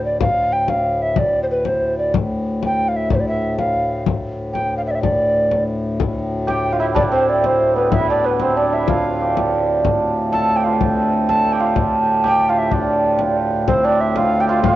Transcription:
0.00 2.14 D2 medium
0.00 2.13 A2 medium
0.05 0.20 D5 medium
0.21 0.54 F5 medium
0.21 frame drum medium
0.53 0.71 G5 medium
0.68 1.03 F5 medium
0.68 frame drum medium
1.02 1.20 E5 medium
1.16 1.42 D5 medium
1.16 frame drum medium
1.33 frame drum soft
1.42 1.46 C5 medium
1.51 1.67 B4 medium
1.65 1.98 C5 medium
1.65 frame drum medium
1.81 frame drum soft
1.98 2.13 D5 medium
2.14 5.99 D2 medium
2.14 5.99 A2 medium
2.14 frame drum medium
2.63 2.90 G5 medium
2.63 frame drum medium
2.79 frame drum soft
2.88 2.98 F5 medium
2.96 3.11 E5 medium
3.10 3.17 D5 medium
3.10 frame drum medium
3.15 3.21 C5 medium
3.20 3.27 D5 medium
3.28 3.57 E5 medium
3.58 4.03 F5 medium
3.58 frame drum medium
3.74 frame drum soft
4.06 frame drum medium
4.53 4.76 G5 medium
4.53 frame drum soft
4.71 frame drum soft
4.77 4.81 F5 medium
4.86 4.92 E5 medium
4.91 4.96 D5 medium
4.95 5.02 E5 medium
5.02 5.63 D5 medium
5.02 frame drum medium
5.51 frame drum medium
6.00 9.84 D2 medium
6.00 9.83 A2 medium
6.00 frame drum medium
6.47 9.20 G4 medium
6.47 6.74 G5 medium
6.47 frame drum medium
6.64 frame drum soft
6.73 6.86 F4 medium
6.73 6.79 F5 medium
6.80 7.92 E4 medium
6.80 6.86 E5 medium
6.95 8.09 D4 medium
6.95 7.02 D5 medium
6.95 frame drum medium
7.12 7.44 C4 medium
7.12 7.31 C5 medium
7.29 7.47 D5 medium
7.44 7.82 C4 medium
7.44 7.76 C5 medium
7.44 frame drum medium
7.61 frame drum soft
7.76 8.23 B3 medium
7.76 7.91 B4 medium
7.92 8.72 E4 medium
7.92 8.07 E5 medium
7.92 frame drum medium
8.10 8.56 D4 medium
8.10 8.27 D5 medium
8.24 8.47 B3 medium
8.24 8.41 B4 medium
8.39 12.41 C4 medium
8.39 8.58 C5 medium
8.39 frame drum medium
8.57 12.30 D4 medium
8.57 8.75 D5 medium
8.72 8.95 E4 medium
8.72 8.90 E5 medium
8.88 10.65 F4 medium
8.88 9.37 F5 medium
8.88 frame drum medium
9.20 10.57 G4 medium
9.37 frame drum medium
9.52 frame drum soft
9.85 13.65 D2 medium
9.85 13.65 A2 medium
9.85 frame drum medium
10.32 11.29 A4 medium
10.32 10.58 A5 medium
10.32 frame drum medium
10.49 frame drum soft
10.56 11.52 G4 medium
10.56 10.65 G5 medium
10.64 11.59 F4 medium
10.64 10.80 F5 medium
10.81 frame drum medium
11.29 14.22 A4 medium
11.29 11.54 A5 medium
11.29 frame drum medium
11.45 frame drum soft
11.52 12.23 G4 medium
11.52 11.62 G5 medium
11.60 12.48 F4 medium
11.60 11.76 F5 medium
11.76 frame drum medium
12.24 14.40 G4 medium
12.24 12.51 G5 medium
12.24 frame drum medium
12.40 frame drum soft
12.49 14.16 F4 medium
12.49 12.60 F5 medium
12.58 12.75 E5 medium
12.71 13.84 D4 medium
12.71 13.37 D5 medium
12.71 frame drum medium
12.87 frame drum soft
13.05 frame drum soft
13.19 frame drum medium
13.52 frame drum soft
13.66 14.76 D2 medium
13.66 14.76 A2 medium
13.66 14.76 C4 medium
13.66 13.86 C5 medium
13.66 frame drum medium
13.83 14.76 D4 medium
13.83 14.02 D5 medium
13.83 frame drum soft
14.01 14.19 E5 medium
14.16 14.48 F4 medium
14.16 14.42 F5 medium
14.16 frame drum medium
14.40 14.76 G4 medium
14.40 14.48 G5 medium
14.47 14.65 F4 medium
14.47 14.63 F5 medium
14.47 frame drum soft
14.63 14.76 F4 medium
14.63 14.76 F5 medium
14.63 frame drum medium

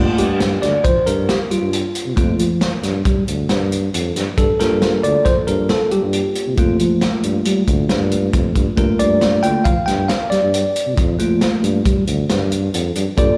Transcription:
0.00 0.25 A3 soft
0.00 0.25 A#3 soft
0.00 0.26 F4 medium
0.18 0.60 G2 medium
0.18 0.64 G4 medium
0.18 closed hi-hat medium
0.40 snare medium
0.40 closed hi-hat medium
0.62 0.73 D2 medium
0.62 0.83 D5 medium
0.62 snare soft
0.62 closed hi-hat medium
0.84 0.95 F3 medium
0.84 1.05 C5 medium
0.84 kick medium
0.84 closed hi-hat medium
1.06 1.27 G2 medium
1.06 1.29 A#4 medium
1.06 closed hi-hat medium
1.29 1.39 G4 medium
1.29 snare loud
1.29 closed hi-hat medium
1.51 1.61 G3 medium
1.51 2.13 F4 medium
1.51 closed hi-hat medium
1.61 1.82 G2 medium
1.73 closed hi-hat medium
1.95 closed hi-hat medium
2.06 2.19 C3 medium
2.16 2.38 F2 medium
2.16 2.46 A3 soft
2.16 2.47 A#3 soft
2.16 2.47 F4 medium
2.16 kick loud
2.16 closed hi-hat medium
2.39 2.60 F3 medium
2.39 closed hi-hat medium
2.61 snare loud
2.61 closed hi-hat medium
2.83 3.04 G2 medium
2.83 snare soft
2.83 closed hi-hat medium
3.05 3.26 G3 medium
3.05 kick loud
3.05 closed hi-hat medium
3.28 3.48 D2 medium
3.28 closed hi-hat medium
3.49 3.91 G2 medium
3.49 snare loud
3.49 closed hi-hat medium
3.72 closed hi-hat medium
3.94 4.14 F2 medium
3.94 closed hi-hat medium
4.15 4.26 G2 medium
4.15 snare soft
4.15 closed hi-hat medium
4.38 4.48 G2 loud
4.38 4.58 A4 medium
4.38 kick medium
4.38 closed hi-hat medium
4.59 5.01 G2 medium
4.59 6.57 A#3 soft
4.59 6.58 F4 medium
4.59 5.68 A4 medium
4.59 5.05 A#4 medium
4.59 snare soft
4.59 closed hi-hat medium
4.82 snare loud
4.82 closed hi-hat medium
5.03 5.14 D2 loud
5.03 5.26 D5 loud
5.03 closed hi-hat medium
5.25 5.36 F3 medium
5.25 5.35 C5 medium
5.25 kick loud
5.25 snare soft
5.25 closed hi-hat medium
5.47 5.69 G2 loud
5.47 5.70 A#4 medium
5.47 closed hi-hat medium
5.69 5.90 A4 medium
5.69 snare loud
5.69 closed hi-hat medium
5.91 6.02 G3 medium
5.91 6.54 G4 medium
5.91 closed hi-hat medium
6.03 6.24 G2 medium
6.13 closed hi-hat medium
6.35 closed hi-hat medium
6.47 6.59 C3 medium
6.57 6.78 F2 medium
6.57 8.74 A3 soft
6.57 8.74 A#3 soft
6.57 8.75 F4 medium
6.57 kick loud
6.57 closed hi-hat medium
6.79 7.01 F3 medium
6.79 closed hi-hat medium
7.01 snare medium
7.01 closed hi-hat medium
7.23 7.45 G2 medium
7.23 closed hi-hat medium
7.45 7.66 G3 medium
7.45 closed hi-hat medium
7.67 7.88 D2 medium
7.67 kick medium
7.67 closed hi-hat medium
7.89 8.31 G2 medium
7.89 snare loud
7.89 closed hi-hat medium
8.11 closed hi-hat medium
8.33 8.54 F2 medium
8.33 kick loud
8.33 closed hi-hat medium
8.55 8.66 G2 medium
8.55 kick medium
8.55 closed hi-hat medium
8.77 8.88 G2 medium
8.77 9.43 A3 medium
8.77 9.43 A#3 soft
8.77 9.43 F4 medium
8.77 9.01 A#4 medium
8.77 kick loud
8.77 closed hi-hat medium
8.99 9.41 G2 medium
8.99 9.45 D5 medium
8.99 closed hi-hat medium
9.21 snare medium
9.21 closed hi-hat medium
9.43 9.54 D2 medium
9.43 9.64 A3 soft
9.43 9.64 A#3 soft
9.43 9.64 F4 medium
9.43 9.66 G5 loud
9.43 closed hi-hat medium
9.64 9.76 F3 medium
9.64 9.86 F5 medium
9.64 kick loud
9.64 closed hi-hat medium
9.86 10.08 G2 medium
9.86 10.07 G5 medium
9.86 snare soft
9.86 closed hi-hat medium
10.08 10.32 F5 medium
10.08 snare loud
10.08 closed hi-hat medium
10.30 10.42 G3 medium
10.30 10.93 D5 medium
10.30 snare soft
10.30 closed hi-hat medium
10.43 10.64 G2 medium
10.54 closed hi-hat medium
10.76 closed hi-hat medium
10.86 10.99 C3 medium
10.97 11.18 F2 loud
10.97 kick loud
10.97 closed hi-hat medium
11.19 11.40 F3 medium
11.19 11.82 A3 medium
11.19 11.82 A#3 medium
11.19 11.83 F4 medium
11.19 closed hi-hat medium
11.41 snare loud
11.41 closed hi-hat medium
11.63 11.84 G2 medium
11.63 closed hi-hat medium
11.85 12.06 G3 medium
11.85 kick loud
11.85 closed hi-hat medium
12.07 12.28 D2 medium
12.07 closed hi-hat medium
12.30 12.71 G2 loud
12.30 snare loud
12.30 closed hi-hat medium
12.52 closed hi-hat medium
12.73 12.94 F2 medium
12.73 closed hi-hat medium
12.95 13.06 G2 medium
12.95 closed hi-hat medium
13.17 13.28 G2 loud
13.17 13.38 A#3 soft
13.17 13.38 F4 medium
13.17 13.38 A4 medium
13.17 13.38 D5 medium
13.17 kick loud
13.17 closed hi-hat medium

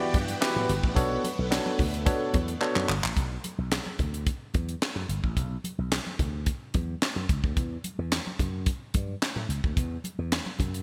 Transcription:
0.00 0.94 E3 medium
0.00 0.16 B3 medium
0.00 3.13 B3 medium
0.00 3.13 D4 medium
0.00 0.16 E4 medium
0.00 0.16 F#4 medium
0.00 0.94 F#4 medium
0.00 0.16 G4 medium
0.00 0.95 G4 medium
0.00 0.16 D5 loud
0.14 0.33 G2 medium
0.14 kick loud
0.14 closed hi-hat medium
0.14 high conga medium
0.28 closed hi-hat medium
0.41 0.71 B3 medium
0.41 0.71 E4 medium
0.41 0.71 F#4 medium
0.41 0.71 G4 medium
0.41 0.71 B4 loud
0.41 snare loud
0.41 clap medium
0.41 closed hi-hat medium
0.56 0.65 A2 medium
0.56 high conga medium
0.69 0.79 G1 medium
0.69 closed hi-hat medium
0.69 muted conga soft
0.84 0.96 A1 loud
0.84 kick medium
0.95 1.16 B1 loud
0.95 3.14 A3 medium
0.95 1.26 B3 medium
0.95 1.26 D4 medium
0.95 1.26 F#4 medium
0.95 1.26 A4 medium
0.95 1.26 C#5 medium
0.95 kick loud
0.95 closed hi-hat medium
0.95 muted conga soft
0.95 low conga medium
1.24 closed hi-hat medium
1.24 high conga medium
1.39 1.58 B1 medium
1.50 1.81 B3 medium
1.50 1.81 D4 medium
1.50 1.81 F#4 medium
1.50 1.81 A4 medium
1.50 1.81 C#5 medium
1.50 snare loud
1.50 clap medium
1.50 closed hi-hat loud
1.66 high conga medium
1.79 2.08 D2 loud
1.79 kick loud
1.79 open hi-hat medium
1.79 muted conga soft
1.79 low conga medium
1.94 closed hi-hat medium
2.05 2.36 B3 medium
2.05 2.36 D4 medium
2.05 2.36 F#4 medium
2.05 2.36 A4 medium
2.05 2.36 C#5 loud
2.05 kick loud
2.05 closed hi-hat loud
2.05 muted conga soft
2.33 2.54 E2 medium
2.33 kick medium
2.33 closed hi-hat medium
2.33 high conga medium
2.48 closed hi-hat medium
2.61 2.91 B3 medium
2.61 2.91 D4 medium
2.61 2.91 F#4 medium
2.61 2.91 A4 medium
2.61 2.92 C#5 loud
2.61 clap medium
2.61 muted conga soft
2.76 2.85 F#2 medium
2.76 clap medium
2.76 high conga medium
2.89 2.99 G1 medium
2.89 clap loud
3.03 3.13 A1 loud
3.03 clap loud
3.17 3.36 B1 loud
3.17 kick loud
3.17 closed hi-hat medium
3.17 muted conga soft
3.17 low conga medium
3.44 closed hi-hat medium
3.44 muted conga soft
3.44 high conga medium
3.58 3.78 B1 medium
3.72 snare loud
3.72 clap medium
3.72 closed hi-hat loud
3.72 muted conga soft
3.86 high conga medium
3.99 4.29 D2 medium
3.99 kick medium
3.99 closed hi-hat medium
3.99 muted conga soft
3.99 low conga medium
4.14 closed hi-hat medium
4.27 kick loud
4.27 closed hi-hat medium
4.54 4.74 E2 medium
4.54 kick medium
4.54 closed hi-hat medium
4.54 muted conga soft
4.54 high conga medium
4.69 closed hi-hat soft
4.82 snare loud
4.82 clap medium
4.82 closed hi-hat medium
4.96 5.05 F#2 medium
4.96 high conga medium
5.09 5.19 G1 medium
5.09 closed hi-hat medium
5.24 5.37 A1 medium
5.24 kick medium
5.37 5.56 B1 loud
5.37 kick loud
5.37 closed hi-hat medium
5.37 low conga medium
5.64 closed hi-hat medium
5.64 muted conga soft
5.64 high conga medium
5.79 5.98 B1 medium
5.92 snare loud
5.92 clap medium
5.92 closed hi-hat loud
5.92 muted conga soft
6.07 high conga medium
6.19 6.49 D2 medium
6.19 kick medium
6.19 closed hi-hat medium
6.19 muted conga soft
6.19 low conga medium
6.46 kick loud
6.46 closed hi-hat loud
6.74 6.94 E2 medium
6.74 kick medium
6.74 closed hi-hat medium
6.74 muted conga soft
6.74 high conga medium
7.02 snare loud
7.02 clap medium
7.02 closed hi-hat medium
7.02 muted conga soft
7.16 7.25 F#2 medium
7.16 high conga medium
7.29 7.39 C#2 medium
7.29 kick loud
7.29 closed hi-hat medium
7.29 muted conga soft
7.44 7.53 D2 medium
7.44 kick medium
7.57 7.76 E2 loud
7.57 kick loud
7.57 closed hi-hat medium
7.57 low conga medium
7.84 closed hi-hat medium
7.84 muted conga soft
7.84 high conga medium
7.99 8.18 E2 medium
8.12 snare loud
8.12 clap medium
8.12 closed hi-hat medium
8.12 muted conga soft
8.27 high conga medium
8.39 8.69 F#2 medium
8.39 kick medium
8.39 closed hi-hat medium
8.39 muted conga soft
8.39 low conga medium
8.66 kick loud
8.66 closed hi-hat medium
8.94 9.14 G2 medium
8.94 kick medium
8.94 closed hi-hat medium
8.94 muted conga soft
8.94 high conga medium
9.22 snare loud
9.22 clap medium
9.22 closed hi-hat medium
9.22 muted conga soft
9.36 9.45 A2 medium
9.36 high conga medium
9.49 9.59 C#2 medium
9.49 closed hi-hat medium
9.64 9.73 D2 medium
9.64 kick medium
9.77 9.96 E2 loud
9.77 kick loud
9.77 closed hi-hat medium
9.77 low conga medium
10.04 closed hi-hat medium
10.04 muted conga soft
10.04 high conga medium
10.19 10.38 E2 medium
10.32 snare loud
10.32 clap medium
10.32 closed hi-hat medium
10.46 high conga medium
10.59 10.83 F#2 medium
10.59 kick medium
10.59 closed hi-hat medium
10.59 low conga medium
10.74 closed hi-hat medium

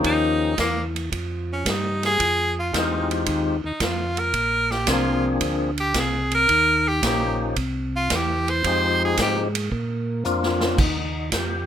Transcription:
0.00 0.56 D#2 medium
0.00 0.54 F3 medium
0.00 0.55 A#3 medium
0.00 0.55 C#4 medium
0.00 0.55 D#4 medium
0.00 0.55 G4 medium
0.04 0.55 D#4 medium
0.04 kick soft
0.04 ride medium
0.58 1.10 E2 medium
0.58 0.82 A#3 medium
0.58 kick soft
0.58 snare medium
0.58 hi-hat pedal soft
0.58 ride medium
0.96 ride soft
1.12 1.64 F2 medium
1.12 kick soft
1.12 ride medium
1.53 1.72 C#4 medium
1.65 2.18 G2 medium
1.65 kick soft
1.65 snare medium
1.65 hi-hat pedal soft
1.65 ride medium
1.70 2.05 D#4 medium
2.03 2.54 G#4 loud
2.03 snare soft
2.03 ride soft
2.20 2.72 F2 medium
2.20 kick soft
2.20 ride medium
2.59 2.79 F4 medium
2.73 3.25 E2 medium
2.73 3.57 G#3 medium
2.73 3.57 C4 medium
2.73 3.57 D#4 medium
2.73 3.57 F4 medium
2.73 3.57 G4 medium
2.73 kick soft
2.73 snare medium
2.73 hi-hat pedal medium
2.73 ride medium
2.77 3.12 D#4 medium
3.11 ride soft
3.26 3.61 D#2 medium
3.26 kick soft
3.26 ride medium
3.64 3.72 D#2 soft
3.64 3.85 D#4 medium
3.80 4.33 F2 medium
3.80 4.20 F4 medium
3.80 kick soft
3.80 snare medium
3.80 hi-hat pedal soft
3.80 ride medium
4.17 4.73 A#4 loud
4.17 ride soft
4.34 4.86 A#1 medium
4.34 kick soft
4.34 ride medium
4.71 4.91 G4 medium
4.71 snare soft
4.87 5.40 C2 medium
4.87 5.71 F3 medium
4.87 5.71 A#3 medium
4.87 5.71 C4 medium
4.87 5.71 D4 medium
4.87 5.26 F4 medium
4.87 5.71 G#4 medium
4.87 kick soft
4.87 snare medium
4.87 hi-hat pedal medium
4.87 ride medium
5.41 5.94 D2 medium
5.41 kick soft
5.41 ride medium
5.78 6.00 G4 medium
5.78 ride soft
5.94 6.47 C2 medium
5.94 kick soft
5.94 snare medium
5.94 hi-hat pedal medium
5.94 ride medium
5.99 6.34 G#4 medium
6.31 6.90 A#4 loud
6.31 ride soft
6.49 7.01 D#2 medium
6.49 kick soft
6.49 ride medium
6.88 7.04 G4 loud
7.03 7.55 A#1 medium
7.03 7.57 F3 medium
7.03 7.57 A#3 medium
7.03 7.57 C#4 medium
7.03 7.57 D#4 medium
7.03 7.57 G4 medium
7.03 7.39 G4 medium
7.03 kick soft
7.03 snare medium
7.03 hi-hat pedal medium
7.03 ride medium
7.56 8.09 C2 medium
7.56 kick soft
7.56 ride medium
7.96 8.16 F4 medium
8.10 8.63 E2 medium
8.10 kick soft
8.10 snare medium
8.10 hi-hat pedal medium
8.10 ride medium
8.15 8.51 G4 medium
8.48 9.02 C5 loud
8.48 ride soft
8.64 9.17 F2 medium
8.64 9.48 F3 medium
8.64 9.48 G#3 medium
8.64 9.48 C4 medium
8.64 9.48 D#4 medium
8.64 9.48 G4 medium
8.64 kick soft
8.64 ride medium
9.04 9.18 G#4 medium
9.17 9.70 G#2 medium
9.17 kick soft
9.17 snare medium
9.17 hi-hat pedal medium
9.17 ride medium
9.22 9.43 G4 medium
9.55 ride medium
9.72 10.24 A#2 medium
9.72 kick soft
10.25 10.77 F2 medium
10.25 10.79 F3 medium
10.25 10.79 A#3 medium
10.25 10.79 C4 medium
10.25 10.79 D4 medium
10.25 10.79 F4 medium
10.25 hi-hat pedal soft
10.43 snare medium
10.60 snare medium
10.65 10.72 C#4 medium
10.78 11.30 D#2 medium
10.78 11.30 D#4 medium
10.78 kick medium
10.78 crash medium
11.32 11.66 F2 medium
11.32 11.66 G4 medium
11.32 kick soft
11.32 snare medium
11.32 hi-hat pedal soft
11.32 ride medium

